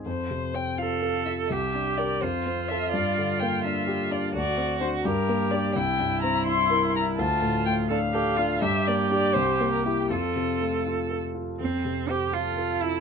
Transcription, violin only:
\new Staff \with { instrumentName = "Violin" } { \time 6/8 \key f \major \tempo 4. = 83 c''4 g''8 f''4 e''8 | e''4 d''8 c''4 e''8 | d''4 g''8 e''4 d''8 | d''4 c''8 bes'4 d''8 |
g''4 bes''8 c'''4 bes''8 | a''4 g''8 f''4. | e''8 d''8 d''8 c''8. bes'16 g'8 | f'4. r4. |
r4. a'4. | }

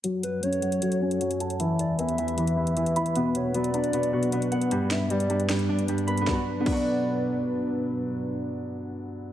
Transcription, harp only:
\new Staff \with { instrumentName = "Harp" } { \time 4/4 \key b \minor \tempo 4 = 154 fis4 fis8 fis8 fis8 cis'8 fis8 a''8 | e4 e8 e8 e8 e'8 e8 b''8 | b4 b8 b8 b8 fis'8 b8 fis''8 | g4 g8 g8 g8 d'8 g8 b''8 |
<b d' fis'>8 r8 <b d' fis'>2.~ | <b d' fis'>1 | }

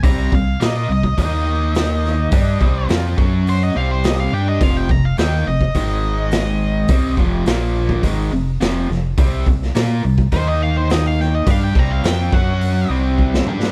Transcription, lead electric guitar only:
\new Staff \with { instrumentName = "Lead electric guitar" } { \time 4/4 \key c \minor \tempo 4 = 105 bes''8 f''8 ees''8 ees''8 ees''2~ | ees''4 r4 c''16 ees''16 f''16 c''16 ees''16 f''16 g''16 ees''16 | f''16 g''16 bes''16 f''16 g''8 ees''2~ ees''8~ | ees''8 r2. r8 |
r2 c''16 ees''16 f''16 c''16 ees''16 f''16 g''16 ees''16 | f''16 g''16 bes''16 f''16 g''8 fis''4 r4. | }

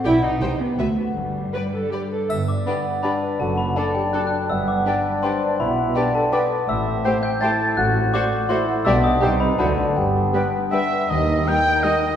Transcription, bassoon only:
\new Staff \with { instrumentName = "Bassoon" } { \time 3/4 \key g \major \tempo 4 = 163 r2. | r2. | r4 b4 d'4 | fis'4 d'2 |
b4 d'2 | e'4 d'4 b4~ | b4 c'4 e'4 | fis'2 e'4 |
d'4 ees'4 d'4 | b2~ b8 r8 | \key ees \major r2. | }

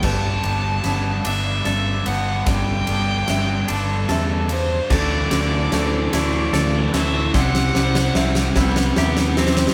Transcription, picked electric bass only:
\new Staff \with { instrumentName = "Picked electric bass" } { \clef bass \time 6/8 \key g \major \tempo 4. = 49 g,,8 g,,8 g,,8 g,,8 g,,8 g,,8 | g,,8 g,,8 g,,8 g,,8 e,4 | d,8 d,8 d,8 d,8 d,8 d,8 | c,8 c,8 c,8 c,8 ees,4 | }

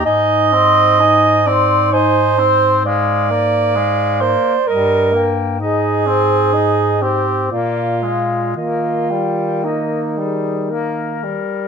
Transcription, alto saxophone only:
\new Staff \with { instrumentName = "Alto saxophone" } { \time 3/4 \key ees \major \tempo 4 = 63 ees''4. d''8 c''4 | d''4. c''8 bes'8 r8 | aes'4. g'8 f'4 | f'4 ees'4. r8 | }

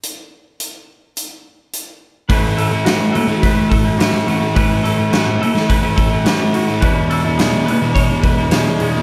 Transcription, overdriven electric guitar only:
\new Staff \with { instrumentName = "Overdriven electric guitar" } { \time 4/4 \key a \major \tempo 4 = 106 r1 | <a, e a cis' e'>8 <e a cis' e'>16 <a cis' e'>16 <a, e a cis' e'>8 <e a cis' e'>16 <a cis' e'>16 <e a cis' e'>16 <a cis' e'>8 <a cis' e'>16 <a, e a cis' e'>8 <e a cis' e'>16 <a cis' e'>16 | <a, e a cis' e'>8 <e a cis' e'>16 <a cis' e'>16 <a, e a cis' e'>8 <e a cis' e'>16 <a cis' e'>16 <e a cis' e'>16 <a cis' e'>8 <a cis' e'>16 <a, e a cis' e'>8 <e a cis' e'>16 <a cis' e'>16 | <e, b, e gis d' e'>8 <e gis d' e'>16 <e gis d' e'>16 <e, b, e gis d' e'>8 <e gis d' e'>16 <e gis d' e'>16 <e gis d' e'>16 <e gis d' e'>8 <e gis d' e'>16 <e, b, e gis d' e'>8 <e gis d' e'>16 <e gis d' e'>16 | }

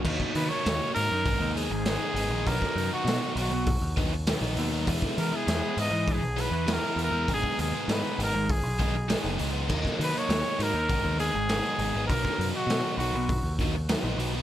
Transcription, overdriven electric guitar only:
\new Staff \with { instrumentName = "Overdriven electric guitar" } { \time 4/4 \key b \major \tempo 4 = 100 <dis fis ais dis'>8. <fis ais dis'>16 <dis fis ais dis'>8 <dis fis ais dis'>8 <gis, dis gis b dis'>8 <dis gis b dis'>8 <gis, dis gis b dis'>16 <gis b dis'>16 <dis gis b dis'>16 <gis b dis'>16 | <b, dis fis b dis'>8. <fis b dis'>16 <b, dis fis b dis'>8 <dis fis b dis'>8. r16 <dis fis b dis'>8 <b, dis fis b dis'>16 <fis b dis'>16 <dis fis b dis'>16 <fis b dis'>16 | <e gis b e'>8. <gis b e'>16 <e gis b e'>8 <e gis b e'>8. r16 <e gis b e'>8 <e gis b e'>16 <gis b e'>16 <e gis b e'>16 <gis b e'>16 | <gis, dis gis b dis'>8. <gis b dis'>16 <gis, dis gis b dis'>8 <dis gis b dis'>8. r16 <dis gis b dis'>8 <gis, dis gis b dis'>16 <gis b dis'>16 <dis gis b dis'>16 <gis b dis'>16 |
<dis fis ais dis'>8. <fis ais dis'>16 <dis fis ais dis'>8 <dis fis ais dis'>8 <gis, dis gis b dis'>8 <dis gis b dis'>8 <gis, dis gis b dis'>16 <gis b dis'>16 <dis gis b dis'>16 <gis b dis'>16 | <b, dis fis b dis'>8. <fis b dis'>16 <b, dis fis b dis'>8 <dis fis b dis'>8. r16 <dis fis b dis'>8 <b, dis fis b dis'>16 <fis b dis'>16 <dis fis b dis'>16 <fis b dis'>16 | }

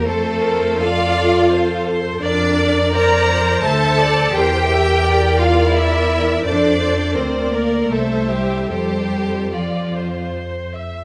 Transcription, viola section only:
\new Staff \with { instrumentName = "Viola section" } { \time 3/4 \key f \major \tempo 4 = 84 << { c''4 d''4 c''8 c''8 | d''2 e''8 d''8 | c''8 e''8 d''2 | c''4 d''4 e''4 |
c''4 d''8 c''4 e''8 | } \\ { a'8 bes'8 a'8 a'4. | bes'4 c''2 | bes'2. | a'8 a'8 bes'4 c''4 |
a'4 r2 | } >> }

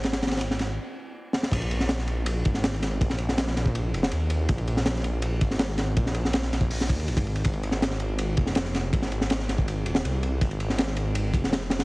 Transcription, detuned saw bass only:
\new Staff \with { instrumentName = "Detuned saw bass" } { \clef bass \time 4/4 \key aes \major \tempo 4 = 162 aes,,2 r2 | bes,,2~ bes,,8 aes,,4. | bes,,4. bes,,4 f,,8 ees,4 | bes,,2~ bes,,8 aes,,4. |
bes,,4. bes,,4 ees,8 aes,,4 | aes,,2~ aes,,8 f,,4. | aes,,4. aes,,4 ees,,8 c,4 | aes,,2~ aes,,8 f,,4. | }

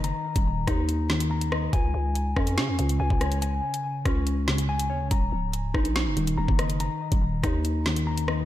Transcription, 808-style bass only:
\new Staff \with { instrumentName = "808-style bass" } { \clef bass \time 4/4 \key ees \minor \tempo 4 = 142 ges,,16 r8 ees,,8. ees,2~ ees,8 | des,8 des,4 f,8 des16 f,16 des,8 des,16 des,8.~ | des,8 r4 des,2 ees,16 des,16 | ees,,8 des,,4 bes,,8. ges,,16 ees,,8 ees,,16 ges,,8.~ |
ges,,16 r8 ees,,8. ees,2~ ees,8 | }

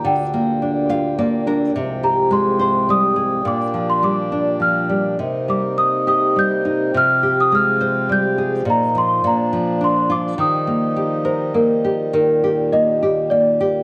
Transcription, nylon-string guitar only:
\new Staff \with { instrumentName = "Nylon-string guitar" } { \time 3/4 \key ees \major \tempo 4 = 104 d8 bes8 d'8 <f' f''>8 <bes d''>8 <d' bes'>8 | c8 g'8 aes8 c''8 g8 aes'8 | bes,8 f8 g8 d'8 f8 g8 | c8 g8 ees'8 g'8 g8 ees'8 |
c8 g'8 aes8 c''8 g8 aes'8 | bes,8 f8 bes,8 f8 d'8 f'8 | ees8 bes8 g'8 bes'8 bes8 g'8 | ees8 g'8 bes8 g'8 bes8 g'8 | }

